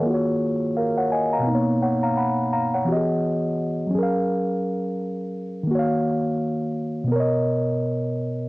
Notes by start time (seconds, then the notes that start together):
Already playing: G#4 C#5
0.00 D#3 A#3
0.06 F4 F#4
0.14 C#5
0.77 A#4 F5
0.98 C#5 F#5
1.12 D#5 G#5
1.33 F5 A#5
1.39 B2
1.43 B3
1.47 A#3 D#4
1.55 C#5
1.83 C#5 F#5
2.03 F5 A#5
2.17 F#5 B5
2.53 F5 A#5
2.74 C#5 F#5
2.84 E3 B3 F#4
2.90 G4 D#5
2.97 G#4
3.87 F#3 C#4
3.95 G#4 A#4
4.03 F5
5.63 D#3 A#3
5.71 F#4
5.75 C#5 F5
7.04 B2 B3
7.12 A#4 C#5
7.20 D#5